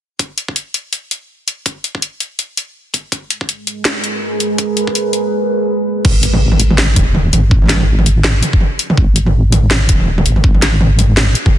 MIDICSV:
0, 0, Header, 1, 4, 480
1, 0, Start_track
1, 0, Key_signature, 5, "minor"
1, 0, Tempo, 365854
1, 256, Time_signature, 4, 2, 24, 8
1, 15200, End_track
2, 0, Start_track
2, 0, Title_t, "Ambient pad"
2, 0, Program_c, 0, 92
2, 4097, Note_on_c, 0, 56, 82
2, 4277, Note_on_c, 0, 68, 73
2, 4623, Note_on_c, 0, 70, 72
2, 5073, Note_on_c, 0, 71, 75
2, 7933, Note_off_c, 0, 71, 0
2, 7935, Note_off_c, 0, 70, 0
2, 7936, Note_off_c, 0, 56, 0
2, 7936, Note_off_c, 0, 68, 0
2, 15200, End_track
3, 0, Start_track
3, 0, Title_t, "Wobble bass"
3, 0, Program_c, 1, 39
3, 7936, Note_on_c, 1, 32, 101
3, 9123, Note_off_c, 1, 32, 0
3, 9135, Note_on_c, 1, 27, 99
3, 9603, Note_off_c, 1, 27, 0
3, 9618, Note_on_c, 1, 32, 91
3, 9841, Note_off_c, 1, 32, 0
3, 9857, Note_on_c, 1, 32, 98
3, 11043, Note_off_c, 1, 32, 0
3, 11777, Note_on_c, 1, 32, 102
3, 12964, Note_off_c, 1, 32, 0
3, 12976, Note_on_c, 1, 27, 99
3, 13443, Note_off_c, 1, 27, 0
3, 13456, Note_on_c, 1, 32, 98
3, 13680, Note_off_c, 1, 32, 0
3, 13696, Note_on_c, 1, 32, 103
3, 14883, Note_off_c, 1, 32, 0
3, 15200, End_track
4, 0, Start_track
4, 0, Title_t, "Drums"
4, 255, Note_on_c, 9, 36, 115
4, 255, Note_on_c, 9, 42, 73
4, 386, Note_off_c, 9, 36, 0
4, 387, Note_off_c, 9, 42, 0
4, 493, Note_on_c, 9, 42, 64
4, 625, Note_off_c, 9, 42, 0
4, 636, Note_on_c, 9, 36, 101
4, 734, Note_on_c, 9, 42, 80
4, 767, Note_off_c, 9, 36, 0
4, 865, Note_off_c, 9, 42, 0
4, 974, Note_on_c, 9, 42, 62
4, 1105, Note_off_c, 9, 42, 0
4, 1215, Note_on_c, 9, 42, 73
4, 1346, Note_off_c, 9, 42, 0
4, 1458, Note_on_c, 9, 42, 63
4, 1589, Note_off_c, 9, 42, 0
4, 1937, Note_on_c, 9, 42, 76
4, 2068, Note_off_c, 9, 42, 0
4, 2175, Note_on_c, 9, 36, 123
4, 2177, Note_on_c, 9, 42, 78
4, 2306, Note_off_c, 9, 36, 0
4, 2308, Note_off_c, 9, 42, 0
4, 2416, Note_on_c, 9, 42, 61
4, 2547, Note_off_c, 9, 42, 0
4, 2555, Note_on_c, 9, 36, 105
4, 2654, Note_on_c, 9, 42, 80
4, 2686, Note_off_c, 9, 36, 0
4, 2785, Note_off_c, 9, 42, 0
4, 2892, Note_on_c, 9, 42, 59
4, 3023, Note_off_c, 9, 42, 0
4, 3134, Note_on_c, 9, 42, 74
4, 3265, Note_off_c, 9, 42, 0
4, 3377, Note_on_c, 9, 42, 65
4, 3508, Note_off_c, 9, 42, 0
4, 3854, Note_on_c, 9, 36, 60
4, 3858, Note_on_c, 9, 42, 79
4, 3985, Note_off_c, 9, 36, 0
4, 3989, Note_off_c, 9, 42, 0
4, 4093, Note_on_c, 9, 36, 119
4, 4097, Note_on_c, 9, 42, 74
4, 4225, Note_off_c, 9, 36, 0
4, 4228, Note_off_c, 9, 42, 0
4, 4335, Note_on_c, 9, 42, 68
4, 4467, Note_off_c, 9, 42, 0
4, 4473, Note_on_c, 9, 36, 115
4, 4577, Note_on_c, 9, 42, 78
4, 4605, Note_off_c, 9, 36, 0
4, 4708, Note_off_c, 9, 42, 0
4, 4816, Note_on_c, 9, 42, 59
4, 4948, Note_off_c, 9, 42, 0
4, 5053, Note_on_c, 9, 38, 115
4, 5053, Note_on_c, 9, 42, 74
4, 5184, Note_off_c, 9, 38, 0
4, 5184, Note_off_c, 9, 42, 0
4, 5296, Note_on_c, 9, 42, 62
4, 5427, Note_off_c, 9, 42, 0
4, 5776, Note_on_c, 9, 42, 80
4, 5907, Note_off_c, 9, 42, 0
4, 6014, Note_on_c, 9, 42, 77
4, 6015, Note_on_c, 9, 36, 127
4, 6146, Note_off_c, 9, 36, 0
4, 6146, Note_off_c, 9, 42, 0
4, 6255, Note_on_c, 9, 42, 61
4, 6387, Note_off_c, 9, 42, 0
4, 6395, Note_on_c, 9, 36, 109
4, 6497, Note_on_c, 9, 42, 81
4, 6526, Note_off_c, 9, 36, 0
4, 6628, Note_off_c, 9, 42, 0
4, 6732, Note_on_c, 9, 42, 57
4, 6863, Note_off_c, 9, 42, 0
4, 7933, Note_on_c, 9, 45, 58
4, 7933, Note_on_c, 9, 49, 98
4, 7935, Note_on_c, 9, 36, 127
4, 8064, Note_off_c, 9, 45, 0
4, 8064, Note_off_c, 9, 49, 0
4, 8067, Note_off_c, 9, 36, 0
4, 8172, Note_on_c, 9, 42, 82
4, 8304, Note_off_c, 9, 42, 0
4, 8313, Note_on_c, 9, 45, 82
4, 8444, Note_off_c, 9, 45, 0
4, 8552, Note_on_c, 9, 45, 57
4, 8653, Note_on_c, 9, 42, 70
4, 8683, Note_off_c, 9, 45, 0
4, 8784, Note_off_c, 9, 42, 0
4, 8797, Note_on_c, 9, 45, 57
4, 8897, Note_on_c, 9, 38, 113
4, 8928, Note_off_c, 9, 45, 0
4, 9029, Note_off_c, 9, 38, 0
4, 9135, Note_on_c, 9, 36, 106
4, 9136, Note_on_c, 9, 42, 84
4, 9136, Note_on_c, 9, 45, 83
4, 9266, Note_off_c, 9, 36, 0
4, 9267, Note_off_c, 9, 42, 0
4, 9267, Note_off_c, 9, 45, 0
4, 9376, Note_on_c, 9, 45, 55
4, 9507, Note_off_c, 9, 45, 0
4, 9617, Note_on_c, 9, 42, 69
4, 9617, Note_on_c, 9, 45, 53
4, 9748, Note_off_c, 9, 42, 0
4, 9748, Note_off_c, 9, 45, 0
4, 9855, Note_on_c, 9, 36, 127
4, 9987, Note_off_c, 9, 36, 0
4, 9997, Note_on_c, 9, 45, 38
4, 10021, Note_off_c, 9, 45, 0
4, 10021, Note_on_c, 9, 45, 41
4, 10045, Note_off_c, 9, 45, 0
4, 10045, Note_on_c, 9, 45, 47
4, 10069, Note_off_c, 9, 45, 0
4, 10069, Note_on_c, 9, 45, 50
4, 10094, Note_off_c, 9, 45, 0
4, 10094, Note_on_c, 9, 38, 65
4, 10094, Note_on_c, 9, 42, 86
4, 10094, Note_on_c, 9, 45, 57
4, 10126, Note_off_c, 9, 45, 0
4, 10126, Note_on_c, 9, 45, 59
4, 10163, Note_off_c, 9, 45, 0
4, 10163, Note_on_c, 9, 45, 68
4, 10200, Note_off_c, 9, 45, 0
4, 10200, Note_on_c, 9, 45, 72
4, 10225, Note_off_c, 9, 38, 0
4, 10225, Note_off_c, 9, 42, 0
4, 10238, Note_off_c, 9, 45, 0
4, 10238, Note_on_c, 9, 45, 53
4, 10369, Note_off_c, 9, 45, 0
4, 10479, Note_on_c, 9, 45, 55
4, 10576, Note_on_c, 9, 42, 70
4, 10610, Note_off_c, 9, 45, 0
4, 10707, Note_off_c, 9, 42, 0
4, 10815, Note_on_c, 9, 38, 117
4, 10815, Note_on_c, 9, 45, 73
4, 10947, Note_off_c, 9, 38, 0
4, 10947, Note_off_c, 9, 45, 0
4, 11054, Note_on_c, 9, 42, 83
4, 11054, Note_on_c, 9, 45, 55
4, 11185, Note_off_c, 9, 42, 0
4, 11185, Note_off_c, 9, 45, 0
4, 11195, Note_on_c, 9, 36, 107
4, 11292, Note_on_c, 9, 45, 54
4, 11326, Note_off_c, 9, 36, 0
4, 11423, Note_off_c, 9, 45, 0
4, 11535, Note_on_c, 9, 42, 69
4, 11666, Note_off_c, 9, 42, 0
4, 11676, Note_on_c, 9, 45, 85
4, 11775, Note_on_c, 9, 36, 127
4, 11807, Note_off_c, 9, 45, 0
4, 11906, Note_off_c, 9, 36, 0
4, 12015, Note_on_c, 9, 42, 83
4, 12146, Note_off_c, 9, 42, 0
4, 12155, Note_on_c, 9, 45, 52
4, 12286, Note_off_c, 9, 45, 0
4, 12496, Note_on_c, 9, 42, 68
4, 12496, Note_on_c, 9, 45, 75
4, 12627, Note_off_c, 9, 42, 0
4, 12627, Note_off_c, 9, 45, 0
4, 12736, Note_on_c, 9, 38, 120
4, 12736, Note_on_c, 9, 45, 50
4, 12867, Note_off_c, 9, 38, 0
4, 12867, Note_off_c, 9, 45, 0
4, 12974, Note_on_c, 9, 42, 82
4, 12974, Note_on_c, 9, 45, 23
4, 12976, Note_on_c, 9, 36, 106
4, 13046, Note_off_c, 9, 45, 0
4, 13046, Note_on_c, 9, 45, 30
4, 13105, Note_off_c, 9, 42, 0
4, 13107, Note_off_c, 9, 36, 0
4, 13119, Note_off_c, 9, 45, 0
4, 13119, Note_on_c, 9, 45, 36
4, 13169, Note_off_c, 9, 45, 0
4, 13169, Note_on_c, 9, 45, 43
4, 13301, Note_off_c, 9, 45, 0
4, 13356, Note_on_c, 9, 45, 82
4, 13456, Note_on_c, 9, 42, 68
4, 13487, Note_off_c, 9, 45, 0
4, 13588, Note_off_c, 9, 42, 0
4, 13594, Note_on_c, 9, 45, 51
4, 13695, Note_on_c, 9, 36, 127
4, 13725, Note_off_c, 9, 45, 0
4, 13827, Note_off_c, 9, 36, 0
4, 13835, Note_on_c, 9, 45, 50
4, 13937, Note_on_c, 9, 38, 66
4, 13937, Note_on_c, 9, 42, 80
4, 13966, Note_off_c, 9, 45, 0
4, 14068, Note_off_c, 9, 38, 0
4, 14068, Note_off_c, 9, 42, 0
4, 14178, Note_on_c, 9, 45, 78
4, 14309, Note_off_c, 9, 45, 0
4, 14415, Note_on_c, 9, 42, 68
4, 14415, Note_on_c, 9, 45, 52
4, 14546, Note_off_c, 9, 42, 0
4, 14546, Note_off_c, 9, 45, 0
4, 14656, Note_on_c, 9, 38, 122
4, 14656, Note_on_c, 9, 45, 49
4, 14787, Note_off_c, 9, 38, 0
4, 14787, Note_off_c, 9, 45, 0
4, 14894, Note_on_c, 9, 42, 81
4, 15025, Note_off_c, 9, 42, 0
4, 15034, Note_on_c, 9, 45, 73
4, 15035, Note_on_c, 9, 36, 116
4, 15165, Note_off_c, 9, 45, 0
4, 15166, Note_off_c, 9, 36, 0
4, 15200, End_track
0, 0, End_of_file